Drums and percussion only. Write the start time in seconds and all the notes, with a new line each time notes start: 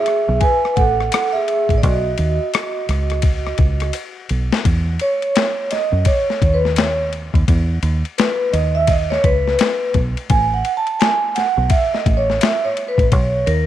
0.06 cross-stick, ride
0.41 kick, ride
0.65 cross-stick
0.77 kick, ride
1.00 cross-stick
1.12 cross-stick, hi-hat pedal, ride
1.48 ride
1.69 kick, ride
1.83 kick, ride
2.18 ride
2.54 cross-stick, hi-hat pedal, ride
2.89 cross-stick, ride
3.10 cross-stick, ride
3.22 kick, ride
3.47 cross-stick
3.58 kick, ride
3.80 cross-stick, ride
3.93 hi-hat pedal, ride
4.29 ride
4.53 snare
4.65 kick, ride
5.00 ride
5.22 ride
5.36 snare, hi-hat pedal, ride
5.71 snare, ride
6.05 kick, ride
6.30 snare
6.42 kick, ride
6.65 snare
6.76 snare, hi-hat pedal, ride
7.13 ride
7.34 kick, ride
7.48 kick, ride
7.83 ride
8.05 ride
8.18 snare, hi-hat pedal, ride
8.54 ride
8.87 kick, ride
9.12 snare
9.24 kick, ride
9.48 snare
9.59 snare, hi-hat pedal, ride
9.94 kick, ride
10.17 ride
10.30 kick, ride
10.65 ride
10.87 ride
11.01 snare, hi-hat pedal, ride
11.36 snare, ride
11.70 kick, ride
11.95 snare
12.06 kick, ride
12.30 snare
12.41 snare, hi-hat pedal, ride
12.77 ride
12.98 kick, ride
13.12 kick, ride
13.47 ride